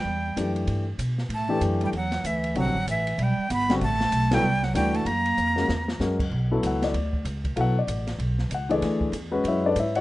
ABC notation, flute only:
X:1
M:4/4
L:1/16
Q:"Swing" 1/4=192
K:Ador
V:1 name="Flute"
g6 z8 z2 | a4 z2 g2 f4 e4 | f4 e4 g4 b3 z | a6 g4 f2 g2 a2 |
^a12 z4 | [K:Bdor] z16 | z16 | z16 |]